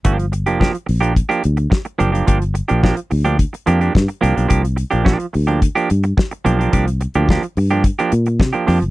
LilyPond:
<<
  \new Staff \with { instrumentName = "Clean electric guitar" } { \time 4/4 \key g \minor \tempo 4 = 108 <f bes d' g'>16 r8 <f bes d' g'>16 <f bes d' g'>16 r8 <f bes d' g'>16 r16 <f bes d' g'>16 r4 <f bes d' g'>16 <f bes d' g'>16 | <f bes d' g'>16 r8 <f bes d' g'>16 <f bes d' g'>16 r8 <f bes d' g'>16 r8 <f bes d' g'>16 <f bes d' g'>16 r8 <f bes d' g'>16 <f bes d' g'>16 | <f bes d' g'>16 r8 <f bes d' g'>16 <f bes d' g'>16 r8 <f bes d' g'>16 r16 <f bes d' g'>16 r4 <f bes d' g'>16 <f bes d' g'>16 | <f bes d' g'>16 r8 <f bes d' g'>16 <f bes d' g'>16 r8 <f bes d' g'>16 r16 <f bes d' g'>16 r8. <f bes d' g'>16 <f bes d' g'>16 r16 | }
  \new Staff \with { instrumentName = "Fingered electric bass" } { \clef bass \time 4/4 \key g \minor g,,8. f,,8 r16 bes,,8. r16 d,8 r8 fis,,8 | g,,8. bes,,8 r16 d,8. r16 f,8 g,16 r16 c,16 b,,16 | c,8. bes,,8 r16 d,8. r16 g,8 r8 b,,8 | c,8. d,8 r16 g,8. r16 bes,8 c16 r16 f,16 fis,,16 | }
  \new DrumStaff \with { instrumentName = "Drums" } \drummode { \time 4/4 <hh bd>16 hh16 hh16 hh16 <bd sn>16 hh16 hho16 hh16 <hh bd>16 hh16 hh16 hh16 <bd sn>16 hh16 hh16 hh16 | <hh bd>16 hh16 hh16 hh16 <bd sn>16 hh16 hho16 hh16 <hh bd>16 hh16 hh16 hh16 <bd sn>16 hh16 hh16 hh16 | <hh bd>16 hh16 hh16 hh16 <bd sn>16 hh16 hho16 hh16 <hh bd>16 hh16 hh16 hh16 <bd sn>16 hh16 hh16 hh16 | <hh bd>16 hh16 hh16 hh16 <bd sn>16 hh16 hho16 hh16 <hh bd>16 hh16 hh16 hh16 <bd sn>16 hh16 <hho sn>16 hh16 | }
>>